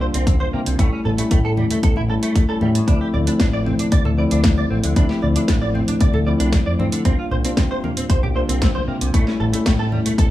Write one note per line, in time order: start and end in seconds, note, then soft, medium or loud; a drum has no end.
0.00 0.76 G3 medium
0.00 0.76 A#3 medium
0.00 0.76 D4 medium
0.00 0.77 F4 medium
0.00 0.05 C5 medium
0.14 0.46 C2 medium
0.14 0.24 C4 medium
0.14 closed hi-hat medium
0.27 0.34 C4 medium
0.27 kick loud
0.27 closed hi-hat soft
0.40 0.47 C5 medium
0.40 high conga medium
0.53 0.62 C3 medium
0.53 0.60 A#3 medium
0.66 0.75 C2 medium
0.66 0.76 C3 medium
0.66 closed hi-hat medium
0.78 0.88 A1 medium
0.78 1.15 G3 medium
0.78 1.15 A3 medium
0.78 0.89 A3 loud
0.78 1.15 C#4 medium
0.78 1.15 E4 medium
0.78 kick loud
0.78 closed hi-hat soft
0.93 0.99 C#4 medium
1.05 1.18 A1 medium
1.05 1.09 A4 medium
1.05 low conga medium
1.17 2.06 G3 medium
1.17 2.06 A3 medium
1.17 1.22 A3 medium
1.17 2.06 C#4 medium
1.17 2.07 E4 medium
1.17 muted fingered electric bass stroke soft
1.17 closed hi-hat medium
1.31 1.63 A2 medium
1.31 1.38 A3 medium
1.31 kick loud
1.31 closed hi-hat soft
1.45 1.51 A4 medium
1.57 1.64 G3 medium
1.57 high conga medium
1.71 1.77 A3 medium
1.71 closed hi-hat medium
1.71 low conga medium
1.83 2.15 A1 medium
1.83 1.94 A4 medium
1.83 kick loud
1.83 closed hi-hat soft
1.96 2.01 E4 loud
1.96 low conga medium
2.09 2.45 G3 medium
2.09 2.46 A3 medium
2.09 2.46 C#4 medium
2.09 2.46 E4 medium
2.09 2.14 A4 medium
2.23 2.32 A3 medium
2.23 closed hi-hat medium
2.35 2.42 A3 medium
2.35 kick loud
2.35 closed hi-hat soft
2.48 2.84 G3 medium
2.48 2.85 A3 medium
2.48 2.85 C#4 medium
2.48 2.85 E4 medium
2.48 2.55 A4 medium
2.61 2.79 A2 medium
2.61 2.68 G3 medium
2.61 high conga medium
2.75 2.85 A2 medium
2.75 closed hi-hat medium
2.87 2.96 D2 medium
2.87 3.24 F3 medium
2.87 3.24 A3 medium
2.87 3.24 C4 medium
2.87 2.98 D4 medium
2.87 3.24 E4 medium
2.87 kick loud
2.87 closed hi-hat soft
3.01 3.07 G4 medium
3.14 3.27 D2 medium
3.14 3.18 D5 medium
3.14 low conga medium
3.26 4.15 F3 medium
3.26 4.15 A3 medium
3.26 4.15 C4 medium
3.26 3.31 D4 medium
3.26 4.16 E4 medium
3.26 muted fingered electric bass stroke soft
3.26 closed hi-hat medium
3.40 3.72 A1 medium
3.40 3.47 D4 medium
3.40 kick loud
3.40 snare loud
3.40 closed hi-hat soft
3.53 3.60 D5 medium
3.66 3.73 C4 medium
3.66 high conga medium
3.79 3.86 D4 medium
3.79 closed hi-hat medium
3.79 low conga medium
3.92 4.24 D2 medium
3.92 4.02 D5 medium
3.92 kick loud
3.92 closed hi-hat soft
4.05 4.09 A4 medium
4.05 low conga medium
4.17 4.93 F3 medium
4.17 4.93 A3 medium
4.17 4.94 C4 medium
4.17 4.94 E4 medium
4.17 4.22 D5 medium
4.31 4.63 D2 medium
4.31 4.41 D4 medium
4.31 closed hi-hat medium
4.44 4.51 D4 medium
4.44 kick loud
4.44 snare loud
4.44 closed hi-hat soft
4.58 4.64 D5 medium
4.58 high conga medium
4.70 4.79 A1 medium
4.70 4.77 C4 medium
4.83 4.92 D2 medium
4.83 4.93 D3 medium
4.83 closed hi-hat medium
4.96 5.05 D2 medium
4.96 5.33 F3 medium
4.96 5.33 A3 medium
4.96 5.33 C4 medium
4.96 5.07 D4 loud
4.96 5.33 E4 medium
4.96 kick loud
4.96 closed hi-hat soft
5.09 5.16 G4 medium
5.09 snare soft
5.22 5.35 D2 medium
5.22 5.27 D5 medium
5.22 low conga medium
5.35 6.24 F3 medium
5.35 6.24 A3 medium
5.35 6.24 C4 medium
5.35 5.40 D4 medium
5.35 6.25 E4 medium
5.35 muted fingered electric bass stroke soft
5.35 closed hi-hat medium
5.48 5.80 A1 medium
5.48 5.55 D4 medium
5.48 kick loud
5.48 snare loud
5.48 closed hi-hat soft
5.62 5.68 D5 medium
5.74 5.81 C4 medium
5.74 high conga medium
5.88 5.94 D4 medium
5.88 closed hi-hat medium
5.88 low conga medium
6.01 6.33 D2 medium
6.01 6.11 D5 medium
6.01 kick loud
6.01 closed hi-hat soft
6.14 6.18 A4 loud
6.14 low conga medium
6.26 7.02 F3 medium
6.26 7.02 A3 medium
6.26 7.02 C4 medium
6.26 7.03 E4 medium
6.26 6.31 D5 medium
6.40 6.57 C2 medium
6.40 6.50 D4 medium
6.40 closed hi-hat medium
6.53 6.60 D4 medium
6.53 kick loud
6.53 snare loud
6.53 closed hi-hat soft
6.66 6.74 F2 medium
6.66 6.73 D5 medium
6.79 6.88 G2 medium
6.79 6.86 C4 medium
6.79 high conga medium
6.92 7.02 D3 medium
6.92 closed hi-hat medium
7.05 7.14 C2 medium
7.05 7.41 G3 medium
7.05 7.42 A#3 medium
7.05 7.15 C4 loud
7.05 7.42 D4 medium
7.05 7.42 F4 medium
7.05 kick loud
7.05 closed hi-hat soft
7.19 7.25 F4 medium
7.31 7.44 C2 medium
7.31 7.35 C5 medium
7.31 low conga medium
7.44 8.32 G3 medium
7.44 8.33 A#3 medium
7.44 7.49 C4 medium
7.44 8.33 D4 medium
7.44 8.33 F4 medium
7.44 muted fingered electric bass stroke soft
7.44 closed hi-hat medium
7.57 7.89 C3 medium
7.57 7.64 C4 medium
7.57 kick loud
7.57 snare loud
7.57 closed hi-hat medium
7.71 7.77 C5 medium
7.84 7.90 A#3 medium
7.84 high conga medium
7.97 8.03 C4 medium
7.97 closed hi-hat medium
7.97 low conga medium
8.10 8.41 C2 medium
8.10 8.20 C5 medium
8.10 kick loud
8.10 closed hi-hat medium
8.23 8.27 G4 loud
8.23 low conga medium
8.35 9.10 G3 medium
8.35 9.11 A#3 medium
8.35 9.11 D4 medium
8.35 9.11 F4 medium
8.35 8.40 C5 medium
8.49 8.80 C2 medium
8.49 8.59 C4 medium
8.49 closed hi-hat medium
8.62 8.68 C4 medium
8.62 kick loud
8.62 snare loud
8.62 closed hi-hat soft
8.75 8.81 C5 medium
8.75 high conga medium
8.87 8.96 C3 medium
8.87 8.94 A#3 medium
9.01 9.09 C2 medium
9.01 9.11 C3 medium
9.01 closed hi-hat medium
9.14 9.22 A1 medium
9.14 9.50 G3 medium
9.14 9.24 A3 loud
9.14 9.50 A3 medium
9.14 9.50 C#4 medium
9.14 9.51 E4 medium
9.14 kick loud
9.14 closed hi-hat medium
9.27 9.34 C#4 medium
9.27 snare soft
9.40 9.52 A1 medium
9.40 9.44 A4 medium
9.40 low conga medium
9.53 10.31 G3 medium
9.53 9.57 A3 medium
9.53 10.31 A3 medium
9.53 10.31 C#4 medium
9.53 10.31 E4 medium
9.53 muted fingered electric bass stroke soft
9.53 closed hi-hat medium
9.66 9.98 A2 medium
9.66 9.73 A3 medium
9.66 kick loud
9.66 snare loud
9.66 closed hi-hat medium
9.79 9.86 A4 medium
9.92 9.99 G3 medium
9.92 high conga medium
10.06 10.12 A3 medium
10.06 closed hi-hat medium
10.06 low conga medium
10.18 10.31 A1 medium
10.18 10.28 A4 medium
10.18 kick loud
10.18 closed hi-hat medium